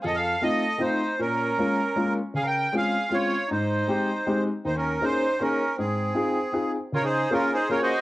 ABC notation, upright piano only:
X:1
M:3/4
L:1/8
Q:"Swing" 1/4=157
K:Ab
V:1 name="Upright piano"
F,,2 [=A,CEF] z [A,CEF] z | B,,2 [A,B,DF] z [A,B,DF] z | D,2 [A,CDF] z [A,CDF] z | A,,2 [A,CEG] z [A,CEG] z |
E,,2 [B,DEA] z [B,DEA] z | A,,2 [CEFA] z [CEFA] z | [K:Db] D,2 [B,DFA] z [B,DFA] z |]